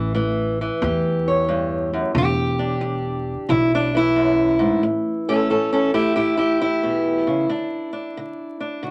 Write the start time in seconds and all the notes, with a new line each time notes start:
Already playing: A1 A2 E3
0.14 A2 E3
0.61 E3
0.82 E2 A2 G4
1.28 C#5
1.49 G2
1.93 F#2
2.15 E1 E2 G4
2.59 D4
2.81 E2
3.49 B1 E2 E4
3.75 D4
3.95 E3 E4
4.16 F#2
4.59 G#2
4.83 A2
5.29 A3 C#4 A4
5.50 A2 C#4 A4
5.72 C#4 A4
5.94 A3 E4 G4
6.16 A2 E4 G4
6.37 E4 G4
6.61 E4
6.83 B2
7.27 C#3
7.49 D3 D4
7.93 D4
8.17 D3
8.60 D4
8.83 D3 F#4